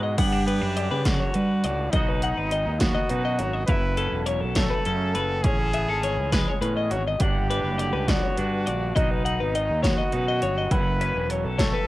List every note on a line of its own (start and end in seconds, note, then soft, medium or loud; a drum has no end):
0.00 0.17 E2 medium
0.00 0.16 G#2 medium
0.00 0.14 B2 medium
0.00 0.14 E3 medium
0.00 0.15 G#3 medium
0.00 0.15 D#4 medium
0.00 0.19 F#4 medium
0.00 0.18 D#5 medium
0.17 1.05 G2 medium
0.17 0.59 G2 loud
0.17 0.32 B3 medium
0.17 1.05 G4 medium
0.17 0.47 F#5 medium
0.17 kick loud
0.17 closed hi-hat medium
0.17 crash loud
0.32 0.46 D4 medium
0.46 0.62 B3 medium
0.46 0.77 B4 medium
0.46 closed hi-hat medium
0.62 0.89 F#2 medium
0.62 1.93 D4 soft
0.77 1.93 D3 medium
0.77 0.91 D5 medium
0.77 closed hi-hat medium
0.91 1.19 C#3 medium
0.91 1.06 B4 medium
1.05 1.34 F#2 medium
1.05 1.92 F#4 medium
1.05 1.20 D5 medium
1.05 kick medium
1.05 snare loud
1.05 closed hi-hat medium
1.20 1.34 C#5 medium
1.34 1.64 G2 medium
1.34 1.63 G3 medium
1.34 1.64 B4 medium
1.34 closed hi-hat medium
1.64 1.92 C#2 medium
1.64 1.94 A2 medium
1.64 1.93 D5 medium
1.64 closed hi-hat medium
1.91 2.35 B1 loud
1.91 2.81 D#4 medium
1.91 2.09 D#5 medium
1.91 kick loud
1.91 closed hi-hat medium
1.95 2.53 B2 medium
1.95 3.67 F#4 medium
2.09 2.23 B4 medium
2.22 3.09 D#4 medium
2.22 2.38 F#5 medium
2.22 closed hi-hat medium
2.37 2.65 G#1 medium
2.37 2.52 B4 medium
2.51 3.65 D#3 medium
2.51 2.80 D#5 medium
2.51 closed hi-hat medium
2.66 2.94 D#2 medium
2.80 3.65 B3 medium
2.80 3.66 F#4 medium
2.80 2.94 C#5 medium
2.80 kick medium
2.80 snare loud
2.80 closed hi-hat loud
2.95 3.10 D#5 medium
3.09 3.65 F#2 medium
3.09 3.38 B2 medium
3.09 3.65 D#4 medium
3.09 3.24 B4 medium
3.09 closed hi-hat medium
3.25 3.39 D#5 medium
3.39 3.67 G#1 medium
3.39 3.53 C#5 medium
3.39 closed hi-hat medium
3.53 3.69 D#5 medium
3.66 4.10 F#1 loud
3.66 5.41 F#2 medium
3.66 7.20 E4 medium
3.66 4.22 B4 loud
3.66 3.97 E5 medium
3.66 kick loud
3.66 closed hi-hat medium
3.97 4.85 C#4 medium
3.97 4.26 A4 medium
3.97 closed hi-hat medium
4.12 4.40 E1 medium
4.26 5.40 F#3 medium
4.26 4.41 C#5 medium
4.26 closed hi-hat medium
4.41 4.70 B1 medium
4.41 4.56 A4 medium
4.55 5.41 A3 medium
4.55 5.44 A4 loud
4.55 4.70 C#5 medium
4.55 kick medium
4.55 snare loud
4.55 closed hi-hat medium
4.70 4.85 B4 medium
4.85 5.14 F#2 medium
4.85 5.41 C#3 medium
4.85 5.41 C#4 medium
4.85 5.15 A4 medium
4.85 closed hi-hat medium
5.15 5.43 F#1 medium
5.15 5.44 B4 medium
5.15 closed hi-hat medium
5.43 5.86 A1 loud
5.43 6.61 A2 medium
5.43 5.73 C#4 medium
5.43 6.61 G#4 loud
5.43 5.59 C#5 medium
5.43 kick loud
5.43 closed hi-hat medium
5.59 5.74 A4 medium
5.74 5.88 B3 medium
5.74 5.89 E5 medium
5.74 closed hi-hat medium
5.88 6.16 G#1 medium
5.88 6.62 C#4 soft
5.88 6.03 A4 medium
6.03 7.16 E3 medium
6.03 6.32 C#5 medium
6.03 closed hi-hat medium
6.17 6.45 C#2 medium
6.32 7.17 G#3 medium
6.32 6.48 B4 medium
6.32 kick medium
6.32 snare loud
6.32 closed hi-hat loud
6.48 6.61 C#5 medium
6.61 7.20 E2 medium
6.61 6.89 A2 medium
6.61 7.17 C#4 medium
6.61 6.76 B4 medium
6.61 closed hi-hat medium
6.77 6.92 D#5 medium
6.90 7.19 G#1 medium
6.90 7.03 F#4 medium
6.90 7.06 C#5 medium
6.90 closed hi-hat medium
7.08 7.21 D#5 medium
7.19 7.62 G1 loud
7.19 8.37 G2 medium
7.19 7.49 D4 medium
7.19 8.09 G4 medium
7.19 7.50 F#5 medium
7.19 kick loud
7.19 closed hi-hat loud
7.50 8.37 D4 medium
7.50 7.78 B4 medium
7.50 closed hi-hat medium
7.64 7.92 F#1 medium
7.78 8.95 D3 medium
7.78 7.92 D5 medium
7.78 closed hi-hat medium
7.93 8.21 C#2 medium
7.93 8.09 B4 medium
8.08 8.92 B3 medium
8.08 8.98 F#4 medium
8.08 8.23 D5 medium
8.08 kick medium
8.08 snare loud
8.08 closed hi-hat medium
8.23 8.37 C#5 medium
8.37 8.92 G2 medium
8.37 8.65 G2 medium
8.37 8.93 D4 medium
8.37 8.66 B4 medium
8.37 closed hi-hat medium
8.66 8.95 A#1 medium
8.66 8.95 D5 medium
8.66 closed hi-hat medium
8.96 9.38 B1 loud
8.96 9.54 B2 medium
8.96 9.84 D#4 medium
8.96 10.71 F#4 medium
8.96 9.11 D#5 medium
8.96 kick loud
8.96 closed hi-hat medium
9.11 9.25 B4 medium
9.25 10.11 D#4 medium
9.25 9.40 F#5 medium
9.25 closed hi-hat medium
9.40 9.68 G#1 medium
9.40 9.54 B4 medium
9.54 10.68 D#3 medium
9.54 9.83 D#5 medium
9.54 closed hi-hat medium
9.70 9.97 D#2 medium
9.83 10.68 B3 medium
9.83 10.73 F#4 medium
9.83 9.97 C#5 medium
9.83 kick medium
9.83 snare loud
9.83 closed hi-hat medium
9.98 10.13 D#5 medium
10.12 10.67 F#2 medium
10.12 10.41 B2 medium
10.12 10.67 D#4 medium
10.12 10.27 B4 medium
10.12 closed hi-hat medium
10.28 10.42 D#5 medium
10.42 10.70 G1 medium
10.42 10.57 C#5 medium
10.42 closed hi-hat medium
10.58 10.72 D#5 medium
10.70 11.13 F#1 loud
10.70 11.87 F#2 medium
10.70 11.87 E4 medium
10.70 11.30 B4 medium
10.70 11.01 F#5 medium
10.70 kick loud
10.70 closed hi-hat medium
11.00 11.87 C#4 medium
11.00 11.30 B4 medium
11.00 closed hi-hat medium
11.16 11.43 E1 medium
11.29 11.87 F#3 medium
11.29 11.45 C#5 medium
11.29 closed hi-hat medium
11.45 11.72 B1 medium
11.45 11.59 A4 medium
11.59 11.87 A3 medium
11.59 11.87 A4 loud
11.59 11.73 C#5 medium
11.59 kick medium
11.59 snare loud
11.59 closed hi-hat loud
11.74 11.87 B4 medium